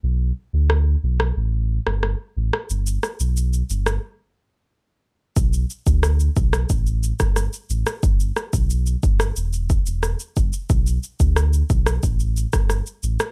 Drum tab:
SH |----------------|xxxxxxxx--------|xxxxxxxxxxxxxxxx|xxxxxxxxxxxxxxxx|
SD |----r--r---rr--r|--r----r--------|----r--r---rr--r|--r----r----r---|
BD |----------------|----------------|o--o--o-o--o----|o--o--o---o---o-|

SH |xxxxxxxxxxxxxxxx|
SD |----r--r---rr--r|
BD |o--o--o-o--o----|